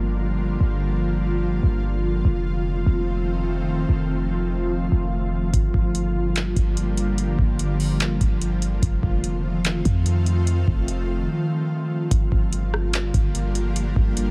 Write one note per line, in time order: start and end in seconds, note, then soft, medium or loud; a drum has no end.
0.00 0.57 G1 loud
0.00 2.21 D3 medium
0.00 2.22 F3 medium
0.00 2.22 G3 medium
0.00 2.22 A#3 medium
0.00 8.78 F4 loud
0.60 1.59 G1 loud
1.63 2.22 G1 loud
2.24 2.84 F1 loud
2.24 5.50 D#3 medium
2.24 12.07 F3 medium
2.24 5.50 A3 medium
2.24 5.50 C4 medium
2.86 3.85 F1 loud
3.89 4.88 F1 loud
4.92 5.51 F1 loud
5.54 5.73 G1 loud
5.54 8.79 D3 medium
5.54 8.79 G3 medium
5.54 8.79 A#3 medium
5.54 kick loud
5.54 closed hi-hat medium
5.74 6.53 G1 loud
5.74 kick medium
5.95 closed hi-hat medium
6.36 clap loud
6.36 closed hi-hat medium
6.56 7.35 G1 loud
6.56 kick medium
6.56 closed hi-hat medium
6.77 closed hi-hat medium
6.97 closed hi-hat medium
7.18 closed hi-hat medium
7.39 8.18 G1 loud
7.39 kick medium
7.59 closed hi-hat medium
7.80 open hi-hat medium
8.00 clap loud
8.00 closed hi-hat medium
8.21 8.80 G1 loud
8.21 kick medium
8.21 closed hi-hat medium
8.41 closed hi-hat medium
8.62 closed hi-hat medium
8.82 9.02 F1 loud
8.82 12.08 D#3 medium
8.82 12.08 A3 medium
8.82 12.08 C4 medium
8.82 12.08 F4 loud
8.82 kick loud
8.82 closed hi-hat medium
9.03 9.82 F1 loud
9.03 kick medium
9.24 closed hi-hat medium
9.65 clap loud
9.65 closed hi-hat medium
9.85 10.64 F2 loud
9.85 kick medium
9.85 closed hi-hat medium
10.06 closed hi-hat medium
10.26 closed hi-hat medium
10.47 closed hi-hat medium
10.68 11.27 F1 loud
10.68 kick medium
10.88 closed hi-hat medium
12.11 12.31 G1 loud
12.11 14.31 D3 medium
12.11 14.31 F3 medium
12.11 14.31 G3 medium
12.11 14.31 A#3 medium
12.11 14.31 F4 medium
12.11 kick loud
12.11 closed hi-hat medium
12.32 13.11 G1 loud
12.32 kick medium
12.53 closed hi-hat medium
12.74 cross-stick medium
12.93 clap loud
12.93 closed hi-hat medium
13.14 13.93 G1 loud
13.14 kick medium
13.14 closed hi-hat medium
13.35 closed hi-hat medium
13.55 closed hi-hat medium
13.76 closed hi-hat medium
13.96 14.31 G1 loud
13.96 kick medium
14.17 closed hi-hat medium